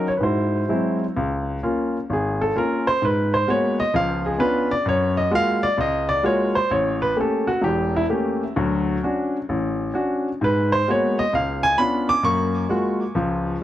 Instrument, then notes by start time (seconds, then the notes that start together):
grand piano
0.08 C#5
0.17 G#2 B4
0.23 E4 F#4 C5
0.69 F#3 G#3 C4 E4
1.17 C#2
1.63 A#3 C#4 F4
2.10 G#1 G#4
2.41 A4
2.56 A#3 C#4 F4 A#4
2.87 C5
3.02 G#2 B4
3.34 C5
3.47 G#3 A#3 B3 F#4 C#5
3.80 D#5
3.94 C#2 F3 F5
4.26 G#4
4.38 B3 C#4 D4 F4 B4
4.71 D5
4.86 F#2 C#5
5.17 D#5
5.31 G#3 A#3 F4 F#4
5.35 F5
5.63 D5
5.78 C#2 D#5
6.09 D5
6.23 G#3 A#3 F4 F#4 C#5
6.55 C5
6.71 A1 C#5
7.02 B4
7.16 A3 A#3 C#4 G4
7.21 A4
7.47 F#4
7.61 E1 E2 G4
7.96 E4
8.10 A3 A#3 C#4 G4
8.56 D2 F#3
9.03 C#4 D4 F#4
9.49 A1
9.94 C#4 D4 F#4
10.41 G#2 B4
10.72 C5
10.88 G#3 A#3 B3 F#4 C#5
11.19 D#5
11.33 C#2 F5
11.63 G#5
11.78 B3 C#4 D4 F4 B5
12.09 D6
12.23 F#2 A#3 C#6
12.69 G#3 A#3 F4 F#4
13.15 C#2 F3